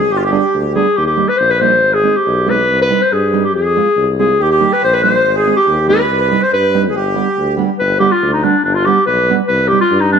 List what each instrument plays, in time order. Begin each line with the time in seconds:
Already playing: tuba D2, accordion G#4, clarinet G#4
0.11 tuba G1, clarinet G4, accordion G4
0.17 clarinet F4
0.23 clarinet G4, accordion G4
0.30 nylon-string guitar G3 B3 D4, accordion G#4
0.38 accordion G4
0.54 tuba D2
0.75 nylon-string guitar G3 B3 D4, clarinet G#4
0.97 tuba D#2, clarinet G4
1.06 clarinet G4
1.16 nylon-string guitar G3 A#3 D#4
1.28 clarinet B4
1.38 tuba A#1, clarinet C5
1.50 clarinet B4
1.60 nylon-string guitar G3 A#3 D#4, clarinet C5
1.84 tuba G#1
1.94 clarinet G#4
2.03 nylon-string guitar G#3 C4 D#4
2.17 clarinet G4
2.27 tuba B1
2.46 nylon-string guitar G#3 C4 D#4, clarinet B4
2.69 tuba C2
2.82 clarinet B4
2.90 nylon-string guitar G3 C4 D#4
3.02 clarinet C5
3.12 tuba G2, clarinet G#4
3.33 nylon-string guitar G3 C4 D#4
3.45 clarinet G4
3.55 tuba F2, clarinet G#4
3.76 nylon-string guitar G#3 C4 F4
3.97 tuba C2
4.19 nylon-string guitar G#3 C4 F4, clarinet G#4
4.39 tuba D#2, accordion G4, clarinet G4
4.50 accordion G4, clarinet G4
4.60 nylon-string guitar G3 A#3 D#4
4.73 clarinet B4
4.82 tuba A#1, accordion C5, clarinet C5
4.94 clarinet B4
5.03 nylon-string guitar G3 A#3 D#4, clarinet C5, accordion C5
5.25 tuba G#1
5.35 accordion G#4, clarinet G#4
5.46 nylon-string guitar G#3 C4 D#4
5.57 clarinet G4, accordion G4
5.67 tuba D#2
5.88 nylon-string guitar G#3 C4 D#4, clarinet B4, accordion B4
6.10 tuba C2
6.21 clarinet B4
6.31 nylon-string guitar G3 C4 D#4
6.39 accordion C5 D5, clarinet C5
6.53 tuba G2, accordion B4, clarinet B4
6.74 nylon-string guitar G3 C4 D#4
6.89 clarinet G#4, accordion G#4
6.95 tuba G1, accordion G4, clarinet G4
7.15 nylon-string guitar G3 B3 D4
7.38 tuba D2
7.57 nylon-string guitar G3 B3 D4
7.79 tuba G1, clarinet B4
7.99 nylon-string guitar G3 B3 D4, clarinet G4
8.12 clarinet F4
8.22 tuba D2
8.33 clarinet D#4
8.43 nylon-string guitar G3 B3 D4, clarinet D4
8.64 tuba G1, clarinet D4
8.74 clarinet F4
8.85 nylon-string guitar G3 B3 D4, clarinet G4
9.06 tuba B1, clarinet B4
9.29 nylon-string guitar G3 B3 D4
9.48 tuba C2, clarinet B4
9.68 nylon-string guitar G3, clarinet G4
9.72 nylon-string guitar C4 D#4
9.81 clarinet F4
9.91 tuba G2
10.00 clarinet D#4
10.12 nylon-string guitar G3 C4 D#4, clarinet D4